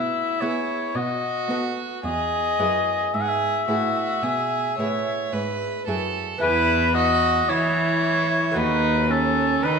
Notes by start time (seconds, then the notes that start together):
Already playing: B2 E4 E5
0.40 B3 E4 G#4 C#5
0.95 B2 F#4 D#5
1.48 B3 F#4 A4
2.03 E2 G#4 D#5
2.59 F#2 B3 E4 G#4
3.13 G#2 G#4 E5
3.21 F#5
3.29 E5
3.68 A2 B3 E4 F#4 G#4
4.23 B2 G#4
4.78 A2 B3 E4 G#4 C#5
5.32 G#2 B4
5.87 F#2 B3 E4 G#4 A4
6.38 E2 B3 E4 G#4 B4
6.43 E2
6.95 F#4 D#5
7.49 E3 E4 C#5
8.51 A3 B3 F#4
8.56 D#2 D#4 B4
9.09 C#4 A4
9.62 D#3 D#4 B4